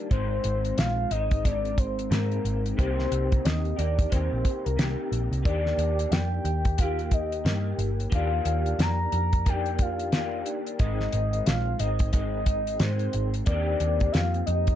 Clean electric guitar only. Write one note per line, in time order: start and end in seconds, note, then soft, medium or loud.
0.00 2.76 D#3 medium
0.00 0.11 G3 medium
0.00 0.12 A#3 medium
0.00 0.13 D4 medium
0.10 1.11 G#2 medium
0.10 1.11 G#3 medium
0.10 1.12 C4 medium
0.10 1.10 D#4 medium
1.10 1.44 C4 soft
1.10 1.44 D#4 soft
1.14 1.43 G#3 soft
1.43 2.09 G#2 medium
1.43 2.10 G#3 medium
1.43 2.12 C4 medium
1.43 2.13 D#4 medium
2.10 2.77 G#2 medium
2.10 2.78 G#3 medium
2.10 2.77 C4 medium
2.10 2.77 D#4 medium
2.76 3.77 C3 medium
2.76 3.80 A#3 medium
2.76 3.78 D#4 medium
2.76 3.76 G4 medium
3.76 4.10 A#3 soft
3.76 4.11 D#4 soft
3.76 4.11 G4 soft
4.09 4.76 C3 medium
4.09 4.78 A#3 medium
4.09 4.79 D#4 medium
4.09 4.80 G4 medium
4.77 5.44 C3 medium
4.77 5.45 A#3 medium
4.77 5.47 D#4 medium
4.77 5.48 G4 medium
5.43 6.77 D#3 medium
5.43 6.78 A#3 medium
5.47 6.80 D4 medium
5.47 6.80 G4 medium
6.78 7.44 D#3 medium
6.78 7.44 A#3 medium
6.78 7.47 G4 medium
7.44 8.09 D#3 medium
7.44 8.11 A#3 medium
7.48 8.14 G4 medium
8.10 9.45 D#3 medium
8.10 9.46 A#3 medium
8.14 9.47 D4 medium
8.14 9.48 G4 medium
9.45 10.12 D#3 medium
9.45 10.12 A#3 medium
9.45 10.14 D4 medium
9.45 10.14 G4 medium
10.12 10.79 D#3 medium
10.12 10.80 A#3 medium
10.12 10.81 D4 medium
10.12 10.81 G4 medium
10.79 11.80 G#2 medium
10.79 11.82 D#3 medium
10.79 11.80 G#3 medium
10.79 11.78 C4 medium
11.79 12.13 D#3 soft
11.79 12.14 G#3 soft
11.79 12.13 C4 soft
12.12 12.78 G#2 medium
12.12 12.81 D#3 medium
12.12 12.81 G#3 medium
12.12 12.82 C4 medium
12.79 13.47 G#2 medium
12.79 13.45 D#3 medium
12.79 13.47 G#3 medium
12.79 13.49 C4 medium
13.46 14.75 D#3 medium
13.46 14.75 A#3 medium
13.50 14.75 C4 medium
13.50 14.75 G4 medium